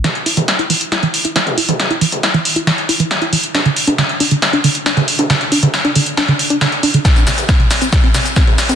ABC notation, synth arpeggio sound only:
X:1
M:4/4
L:1/16
Q:1/4=137
K:Ador
V:1 name="Synth arpeggio sound"
E, z E E, z E E, z E E, z E E, z E E, | z E E, z E E, z E E, z E E, z E E, z | D D, z D D, z D D, z D D, z D D, z D | D, z D D, z D D, z D D, z D D, z D D, |
z C C, z C C, z C z C C, z C C, z C |]